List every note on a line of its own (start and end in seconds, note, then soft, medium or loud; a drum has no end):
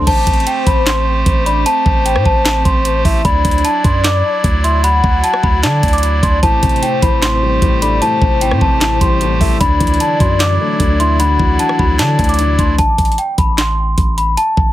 0.07 0.26 A1 loud
0.07 3.22 A3 medium
0.07 3.22 G4 medium
0.07 1.42 C5 loud
0.07 3.22 C5 medium
0.07 0.44 A5 loud
0.07 kick loud
0.07 closed hi-hat medium
0.07 crash loud
0.27 0.46 A1 loud
0.27 kick loud
0.27 closed hi-hat medium
0.34 closed hi-hat medium
0.40 closed hi-hat soft
0.47 0.62 G5 medium
0.47 closed hi-hat medium
0.67 1.24 A1 loud
0.67 0.82 B5 medium
0.67 kick loud
0.67 closed hi-hat medium
0.87 1.43 C6 medium
0.87 snare loud
0.87 clap medium
0.87 closed hi-hat medium
1.26 1.64 A1 loud
1.26 kick medium
1.26 closed hi-hat medium
1.46 1.65 D5 medium
1.46 1.61 B5 medium
1.46 closed hi-hat medium
1.66 3.01 C5 loud
1.66 2.03 A5 loud
1.66 closed hi-hat medium
1.86 2.17 A1 loud
1.86 kick loud
2.06 2.21 G5 medium
2.06 closed hi-hat medium
2.16 2.25 A2 loud
2.16 cross-stick loud
2.26 2.64 A1 loud
2.26 2.41 A5 medium
2.26 kick loud
2.45 snare loud
2.45 clap medium
2.45 closed hi-hat medium
2.65 3.03 A1 loud
2.65 3.21 C6 medium
2.65 kick loud
2.65 closed hi-hat medium
2.85 closed hi-hat medium
3.05 3.24 A1 loud
3.05 3.24 E5 medium
3.05 kick medium
3.05 open hi-hat medium
3.25 3.44 D2 loud
3.25 6.40 F#3 medium
3.25 6.40 E4 medium
3.25 6.40 D5 medium
3.25 4.60 D5 loud
3.25 3.62 B5 loud
3.25 kick loud
3.25 closed hi-hat medium
3.45 3.64 D2 loud
3.45 kick loud
3.45 closed hi-hat medium
3.51 closed hi-hat medium
3.58 closed hi-hat soft
3.65 3.80 A5 medium
3.65 closed hi-hat medium
3.84 4.23 F#2 loud
3.84 3.99 C6 medium
3.84 kick loud
3.84 closed hi-hat medium
4.04 4.60 D6 medium
4.04 snare loud
4.04 clap medium
4.04 closed hi-hat medium
4.44 5.01 D2 loud
4.44 kick medium
4.44 closed hi-hat medium
4.64 4.83 E5 medium
4.64 4.79 C6 medium
4.64 closed hi-hat medium
4.84 5.59 F#5 loud
4.84 5.21 B5 loud
4.84 closed hi-hat medium
5.04 5.23 D2 loud
5.04 kick loud
5.24 5.39 A5 medium
5.24 closed hi-hat medium
5.34 cross-stick loud
5.43 5.65 D2 loud
5.43 5.59 B5 medium
5.43 kick loud
5.63 5.82 D3 loud
5.63 6.39 D5 medium
5.63 5.91 A5 medium
5.63 snare loud
5.63 clap medium
5.63 closed hi-hat medium
5.83 6.21 D2 loud
5.83 kick loud
5.83 closed hi-hat medium
5.88 closed hi-hat medium
5.93 6.21 D6 medium
5.93 closed hi-hat medium
5.98 closed hi-hat medium
6.03 closed hi-hat medium
6.23 6.42 D2 loud
6.23 6.38 C6 medium
6.23 kick medium
6.23 closed hi-hat medium
6.43 6.62 A1 loud
6.43 6.81 A2 medium
6.43 9.57 A3 medium
6.43 9.57 G4 medium
6.43 7.78 C5 loud
6.43 9.57 C5 medium
6.43 6.80 A5 loud
6.43 kick loud
6.43 closed hi-hat medium
6.63 6.82 A1 loud
6.63 7.62 C3 medium
6.63 kick loud
6.63 closed hi-hat medium
6.69 closed hi-hat medium
6.76 closed hi-hat soft
6.82 7.21 A2 medium
6.82 6.97 G5 medium
6.82 closed hi-hat medium
7.02 7.60 A1 loud
7.02 8.02 E3 medium
7.02 7.17 B5 medium
7.02 kick loud
7.02 closed hi-hat medium
7.22 7.60 A2 medium
7.22 7.78 C6 medium
7.22 snare loud
7.22 clap medium
7.22 closed hi-hat medium
7.42 8.42 G3 medium
7.62 8.00 A1 loud
7.62 8.00 A2 medium
7.62 kick medium
7.62 closed hi-hat medium
7.82 8.81 A3 medium
7.82 8.01 D5 medium
7.82 7.97 B5 medium
7.82 closed hi-hat medium
8.02 8.40 A2 medium
8.02 9.37 C5 loud
8.02 8.39 A5 loud
8.02 closed hi-hat medium
8.22 8.53 A1 loud
8.22 9.21 C3 medium
8.22 kick loud
8.41 8.80 A2 medium
8.41 8.57 G5 medium
8.41 closed hi-hat medium
8.51 8.61 A2 loud
8.51 cross-stick loud
8.61 8.99 A1 loud
8.61 9.61 E3 medium
8.61 8.76 A5 medium
8.61 kick loud
8.81 9.19 A2 medium
8.81 8.96 A5 medium
8.81 snare loud
8.81 clap medium
8.81 closed hi-hat medium
9.01 9.39 A1 loud
9.01 9.61 G3 medium
9.01 9.57 C6 medium
9.01 kick loud
9.01 closed hi-hat medium
9.21 9.61 A2 medium
9.21 closed hi-hat medium
9.41 9.60 A1 loud
9.41 9.61 A3 medium
9.41 9.60 E5 medium
9.41 kick medium
9.41 open hi-hat medium
9.61 9.80 D2 loud
9.61 9.99 D3 medium
9.61 12.75 F#3 medium
9.61 12.75 E4 medium
9.61 12.75 D5 medium
9.61 10.96 D5 loud
9.61 9.98 B5 loud
9.61 kick loud
9.61 closed hi-hat medium
9.81 10.00 D2 loud
9.81 10.80 E3 medium
9.81 kick medium
9.81 closed hi-hat medium
9.87 closed hi-hat medium
9.94 closed hi-hat soft
10.00 10.39 D3 medium
10.00 10.15 A5 medium
10.00 closed hi-hat medium
10.20 10.58 F#2 loud
10.20 11.20 F#3 loud
10.20 10.35 C6 medium
10.20 kick medium
10.20 closed hi-hat medium
10.40 10.78 D3 medium
10.40 10.96 D6 medium
10.40 snare loud
10.40 clap medium
10.40 closed hi-hat medium
10.60 11.59 A3 medium
10.80 11.37 D2 loud
10.80 11.18 D3 medium
10.80 kick medium
10.80 closed hi-hat medium
11.00 11.99 D4 loud
11.00 11.19 E5 medium
11.00 11.15 C6 medium
11.00 closed hi-hat medium
11.20 11.58 D3 medium
11.20 11.95 F#5 loud
11.20 11.57 B5 loud
11.20 closed hi-hat medium
11.40 11.59 D2 loud
11.40 12.39 E3 medium
11.40 kick loud
11.59 11.98 D3 medium
11.59 11.74 A5 medium
11.59 closed hi-hat medium
11.69 cross-stick loud
11.79 12.01 D2 loud
11.79 12.79 F#3 medium
11.79 11.94 B5 medium
11.79 kick loud
11.99 12.37 D3 medium
11.99 12.18 D3 loud
11.99 12.75 D5 medium
11.99 12.27 A5 medium
11.99 snare loud
11.99 clap medium
11.99 closed hi-hat medium
12.19 12.57 D2 loud
12.19 12.79 A3 medium
12.19 kick loud
12.19 closed hi-hat medium
12.24 closed hi-hat medium
12.29 12.57 D6 medium
12.29 closed hi-hat medium
12.34 closed hi-hat medium
12.39 12.79 D3 loud
12.39 closed hi-hat medium
12.59 12.78 D2 loud
12.59 12.79 D4 medium
12.59 12.74 C6 medium
12.59 kick medium
12.59 closed hi-hat medium
12.79 12.98 A1 loud
12.79 13.16 A5 loud
12.79 kick loud
12.79 closed hi-hat medium
12.98 13.17 A1 loud
12.98 kick medium
12.98 closed hi-hat medium
13.05 closed hi-hat medium
13.12 closed hi-hat soft
13.18 13.33 G5 medium
13.18 closed hi-hat medium
13.38 13.95 A1 loud
13.38 13.53 B5 medium
13.38 kick medium
13.38 closed hi-hat medium
13.58 14.14 C6 medium
13.58 snare loud
13.58 clap medium
13.58 closed hi-hat medium
13.98 14.36 A1 loud
13.98 kick medium
13.98 closed hi-hat medium
14.18 14.33 B5 medium
14.18 closed hi-hat medium
14.37 14.73 A5 loud
14.37 closed hi-hat medium
14.57 14.73 A1 loud
14.57 kick medium